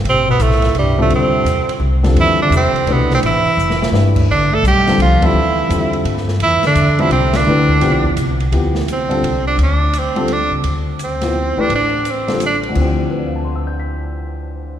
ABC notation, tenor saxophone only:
X:1
M:3/4
L:1/8
Q:"Swing" 1/4=170
K:Ddor
V:1 name="Tenor saxophone"
C B, A,2 G, A, | C4 z2 | E D C2 B, C | E4 z2 |
D A G2 F E- | E3 z3 | E D2 E C D- | D4 z2 |
z2 C3 D | D2 C2 D z | z2 C3 D | D2 C2 D z |
z6 | z6 |]